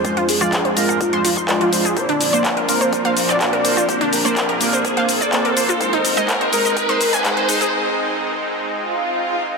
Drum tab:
HH |xxoxxxoxxxoxxxox|xxo-xxoxxxoxxxox|xxoxxxoxxxoxxxox|xxoxxxoxxxoxxxox|
SH |x-xxx-xxx-xxx-xx|x-xxx-xxx-xxx-xx|x-xxx-xxx-xxx-xx|x-xxx-xxx-xxx-xx|
CP |----x-------x---|----x------xx---|----x-------x---|----x------xx---|
BD |o---o---o--oo---|o---o---o---o---|o---o---o--oo---|o---o---o---o---|

HH |----------------|
SH |----------------|
CP |----------------|
BD |----------------|